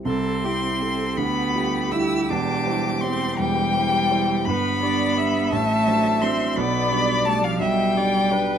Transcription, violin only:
\new Staff \with { instrumentName = "Violin" } { \time 6/8 \key c \major \tempo 4. = 56 c'''4. b''4 e'''8 | d'''4 c'''8 g''4. | b''4. a''4 c'''8 | b''4 a''16 f''16 g''4. | }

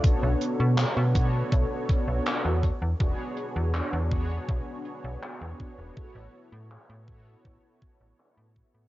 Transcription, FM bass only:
\new Staff \with { instrumentName = "FM bass" } { \clef bass \time 4/4 \key a \major \tempo 4 = 81 b,,16 b,,16 r16 b,16 r16 b,8. b,,16 r8 b,,16 r16 e,16 r16 e,16 | e,,16 r8 e,16 r16 e,8. b,,16 r8 b,,16 r16 e,16 r16 e,,16 | a,,16 a,,16 r16 a,16 r16 a,8. a,,16 r8 a,,16 r16 a,16 r16 a,16 | }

